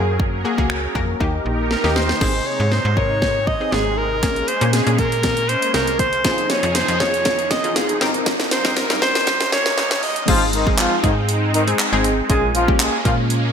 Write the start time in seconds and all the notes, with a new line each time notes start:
Already playing: F#2 F#3 A#3 C#4 F#4 G#4 A#4
0.20 kick
0.45 A#3 F#4 G#4
0.58 C#2 A#3 F#4 G#4, kick
0.70 finger snap
0.95 F2 A#3 F#4 A#4, kick
1.20 D#2 D#3 A#3 D#4 G4 A#4, kick
1.46 A#1
1.71 A#4, snare
1.84 D#2 A#3 D#4 G4, snare
1.96 C5, snare
2.09 snare
2.21 G#1 C3 G#3 C4 D#4 G#4, kick, snare, crash, riser
2.47 C#5
2.60 G#2
2.72 C5, snare
2.85 G#2
2.97 C3 D#4 A#4 C#5, kick
3.22 kick, snare
3.47 D#5, kick
3.60 C4 D#4 G#4
3.72 G#1 G#4, snare
3.98 A#4
4.23 A#1 A#3 C#4 G#4, kick, snare, closed hi-hat
4.36 closed hi-hat
4.48 C5, closed hi-hat
4.61 A#2 A#3 C#4 G#4, closed hi-hat
4.73 G#4, snare, closed hi-hat
4.86 A#2 A#3 C#4 G#4, closed hi-hat
4.99 A#4, kick, closed hi-hat
5.12 closed hi-hat
5.23 kick, snare, closed hi-hat
5.37 closed hi-hat
5.49 C5, closed hi-hat
5.62 closed hi-hat
5.74 C2 A#4, snare, closed hi-hat
5.87 closed hi-hat
5.99 C5, kick, closed hi-hat
6.13 closed hi-hat
6.24 F1 C3 F3 D#4 F4 G#4, kick, snare, closed hi-hat
6.38 closed hi-hat
6.50 C#5, snare, closed hi-hat
6.63 F2, closed hi-hat
6.75 C5, snare, closed hi-hat
6.88 F2, closed hi-hat
7.00 D#4 F4 G#4 C#5, kick, snare, closed hi-hat
7.14 closed hi-hat
7.25 kick, snare, closed hi-hat
7.39 closed hi-hat
7.51 D#5, kick, snare, closed hi-hat
7.64 D#4 F4 G#4, closed hi-hat
7.76 F1 G#4, snare, closed hi-hat
7.89 closed hi-hat
8.01 G1 A#3 C4 D#4 A#4, snare, closed hi-hat
8.14 closed hi-hat
8.26 kick, snare, closed hi-hat
8.40 snare, closed hi-hat
8.51 C5, snare, closed hi-hat
8.65 G2 C4 D#4 A#4, kick, snare, closed hi-hat
8.76 A#4, snare, closed hi-hat
8.90 G2 C4 D#4 A#4, snare, closed hi-hat
9.02 C5, kick, snare, closed hi-hat
9.15 snare, closed hi-hat
9.27 kick, snare, closed hi-hat
9.40 snare, closed hi-hat
9.52 C#5, snare, closed hi-hat
9.66 snare, closed hi-hat
9.78 G1, snare, closed hi-hat
9.91 C#5, snare, closed hi-hat
10.03 D#5, open hi-hat
10.16 closed hi-hat
10.28 G#1 F3 G#3 C4 D#4 F4 G#4, kick, closed hi-hat, crash
10.53 D#3 D#4, closed hi-hat
10.66 G#3 C4 D#4 G#4, kick
10.78 F3 F4, clap, closed hi-hat
11.03 G#2 D#3 G#3 C4 D#4 G#4, kick, closed hi-hat
11.29 closed hi-hat
11.54 D#3 D#4, closed hi-hat
11.67 G#3 C4 D#4 G#4, closed hi-hat
11.79 clap, closed hi-hat
11.92 G#1 G#3 C4 D#4 G#4
12.04 closed hi-hat
12.29 A#1 G#3 A#3 C#4 F4 G#4, kick, closed hi-hat
12.55 F3 F4, closed hi-hat
12.68 G#3 A#3 C#4 G4, kick
12.80 G#3 G#4, clap, closed hi-hat
13.05 A#2 F3 G#3 A#3 C#4 F4, kick, closed hi-hat
13.30 closed hi-hat